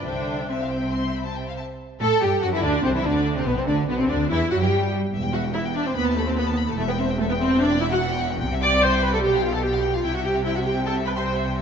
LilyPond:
<<
  \new Staff \with { instrumentName = "Violin section" } { \time 4/4 \key c \major \tempo 4 = 146 g''4 e''16 f''16 g''8 c'''8 b''16 a''16 g''16 f''16 a''8 | \key e \minor r8 a'8 g'8 fis'16 e'16 d'8 c'16 e'16 d'8. c'16 | b16 c'16 d'8 b16 c'16 d'8 e'8 fis'16 g'8. r8 | e''16 g''16 e''16 g''16 e''16 g''16 e''16 g''16 b''16 a''16 b''16 a''16 b''16 a''16 b''16 a''16 |
e''16 g''16 e''16 g''16 e''16 g''16 e''16 g''16 e''16 g''16 e''16 g''16 e''16 g''16 e''16 g''16 | g''16 e''16 g''16 e''16 g''16 e''16 g''16 e''16 g''16 f''16 g''16 f''16 g''16 f''16 g''16 f''16 | g''16 e''16 g''16 e''16 g''16 e''16 g''16 e''16 g''16 e''16 g''16 e''16 g''16 e''16 g''16 e''16 | }
  \new Staff \with { instrumentName = "Violin section" } { \time 4/4 \key c \major <c'' e''>4 <c'' e''>2~ <c'' e''>8 r8 | \key e \minor r8 a''8 g''8 fis''16 e''16 d''8 c''16 e''16 d''8. c''16 | b'16 c''16 d''8 b'16 c''16 d''8 e''8 fis''16 g''8. r8 | r8 fis''8 e''8 d''16 c''16 b'8 a'16 c''16 b'8. a'16 |
a'16 b'16 c''8 a'16 b'16 c''8 d''8 e''16 fis''8. r8 | r8 d'''8 c'''8 b''16 a''16 g''8 f''16 a''16 g''8. f''16 | e''16 fis''16 g''8 e''16 fis''16 g''8 a''8 b''16 c'''8. r8 | }
  \new Staff \with { instrumentName = "Viola section" } { \time 4/4 \key c \major d'4 c'2~ c'8 r8 | \key e \minor r8 a'8 g'8 fis'16 e'16 d'8 c'16 e'16 d'8. c'16 | b16 c'16 d'8 b16 c'16 d'8 e'8 fis'16 g'8. r8 | r8 fis'8 e'8 d'16 c'16 b8 a16 c'16 b8. a16 |
a16 b16 c'8 a16 b16 c'8 d'8 e'16 fis'8. r8 | r8 d''8 c''8 b'16 a'16 g'8 f'16 a'16 g'8. f'16 | e'16 fis'16 g'8 e'16 fis'16 g'8 a'8 b'16 c''8. r8 | }
  \new Staff \with { instrumentName = "Cello section" } { \clef bass \time 4/4 \key c \major d4 c2~ c8 r8 | \key e \minor r8 a8 g8 fis16 e16 d8 c16 e16 d8. c16 | b,16 c16 d8 b,16 c16 d8 e8 fis16 g8. r8 | e,2 dis,2 |
e,1 | c2 b,2 | c1 | }
  \new Staff \with { instrumentName = "Double bass section" } { \clef bass \time 4/4 \key c \major c,2.~ c,8 r8 | \key e \minor r8 a,8 g,8 fis,16 r16 d,8 c,16 r16 d,8. r16 | b,,16 r16 d,8 b,,16 r16 d,8 e,8 fis,16 g,8. r8 | e,,2 dis,2 |
e,,1 | c,2 b,,2 | c,1 | }
>>